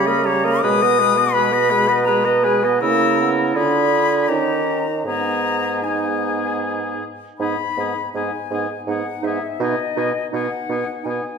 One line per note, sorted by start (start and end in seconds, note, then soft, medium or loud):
0.00 0.63 C#3 medium
0.00 0.26 B5 loud
0.06 0.27 A#3 medium
0.06 0.28 A#4 medium
0.06 0.27 D#5 medium
0.25 0.46 G3 medium
0.25 0.46 G4 medium
0.25 0.46 C#5 medium
0.25 0.62 A#5 loud
0.44 0.63 A#3 medium
0.44 0.63 A#4 medium
0.44 0.63 D#5 medium
0.61 2.78 B2 medium
0.61 0.84 G#3 medium
0.61 0.84 G#4 medium
0.61 0.83 B4 medium
0.61 1.35 D#6 loud
0.82 1.01 B3 medium
0.82 1.02 B4 medium
0.82 1.01 D#5 medium
0.99 1.18 G#3 medium
0.99 1.20 G#4 medium
0.99 1.19 B4 medium
1.17 1.35 B3 medium
1.17 1.35 B4 medium
1.17 1.33 D#5 medium
1.33 1.54 G#3 medium
1.33 1.54 G#4 medium
1.33 1.54 B4 medium
1.33 2.04 B5 loud
1.53 1.72 B3 medium
1.53 1.72 B4 medium
1.53 1.72 D#5 medium
1.70 1.90 G#3 medium
1.70 1.90 G#4 medium
1.70 1.89 B4 medium
1.88 2.06 B3 medium
1.88 2.06 B4 medium
1.88 2.06 D#5 medium
2.04 2.26 G#3 medium
2.04 2.26 G#4 medium
2.04 2.26 B4 medium
2.04 2.45 A#5 loud
2.24 2.46 B3 medium
2.24 2.46 B4 medium
2.24 2.45 D#5 medium
2.44 2.66 G#3 medium
2.44 2.65 G#4 medium
2.44 2.65 B4 medium
2.44 2.83 G#5 medium
2.63 2.83 B3 medium
2.63 2.81 B4 medium
2.63 2.81 D#5 medium
2.81 3.52 C#3 medium
2.81 3.22 A#3 medium
2.81 3.57 E4 medium
2.81 3.57 A#4 medium
2.81 3.30 E6 loud
3.20 3.55 B3 medium
3.54 4.28 D3 medium
3.54 4.30 D4 medium
3.54 4.33 F4 medium
3.54 4.30 G#4 medium
3.54 4.30 B5 loud
4.28 5.07 D#3 medium
4.28 4.89 C#4 medium
4.28 4.90 D#4 medium
4.28 4.90 G4 medium
4.28 5.05 A#5 medium
5.05 7.06 G#2 medium
5.05 5.82 B3 medium
5.05 5.83 D#4 medium
5.05 5.83 G#4 medium
5.05 5.85 A#5 loud
5.83 7.04 B3 medium
5.83 7.03 D#4 medium
5.83 7.04 G#4 soft
5.83 7.02 G#5 medium
7.38 7.55 G#2 medium
7.38 7.56 B3 soft
7.38 7.56 D#4 soft
7.38 7.57 G#4 soft
7.38 8.10 B5 medium
7.77 7.93 G#2 soft
7.77 7.93 B3 soft
7.77 7.94 D#4 soft
7.77 7.96 G#4 soft
8.14 8.30 G#2 soft
8.14 8.30 B3 soft
8.14 8.30 D#4 soft
8.14 8.32 G#4 soft
8.14 8.86 G#5 medium
8.50 8.67 G#2 soft
8.50 8.66 B3 soft
8.50 8.66 D#4 soft
8.50 8.69 G#4 soft
8.86 9.03 G#2 soft
8.86 9.03 B3 soft
8.86 9.02 D#4 soft
8.86 9.06 G#4 soft
8.86 9.26 F#5 medium
9.22 9.39 G#2 soft
9.22 9.39 B3 soft
9.22 9.38 D#4 soft
9.22 9.63 E5 medium
9.26 9.42 G#4 soft
9.59 9.75 B2 medium
9.59 9.76 B3 soft
9.59 9.75 D#4 soft
9.59 9.79 G#4 soft
9.59 10.31 D#5 medium
9.95 10.13 B2 soft
9.95 10.12 B3 soft
9.95 10.11 D#4 soft
9.95 10.13 G#4 soft
10.31 10.49 B2 soft
10.31 10.48 B3 soft
10.31 10.47 D#4 soft
10.31 11.06 F#5 medium
10.35 10.51 G#4 soft
10.68 10.85 B2 soft
10.68 10.85 B3 soft
10.68 10.84 D#4 soft
10.68 10.87 G#4 soft
11.03 11.21 B2 soft
11.03 11.21 B3 soft
11.03 11.19 D#4 soft
11.03 11.38 G#5 medium
11.09 11.25 G#4 soft